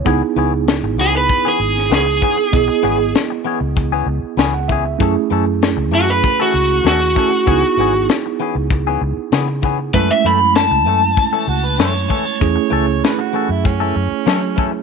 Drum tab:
HH |x---x---x---x---|x---x---x---x---|x---x---x---x---|x---x---x---x---|
SD |----o------oo---|----o-------o---|----o-------o-o-|----o-------o---|
BD |o-------o-----o-|o-------o-----o-|o-------o-----o-|o-------o-----o-|

HH |x---x---x---x---|x---x---x---x---|
SD |----o-------o---|----o-------o---|
BD |o-------o-----o-|o-------o-----o-|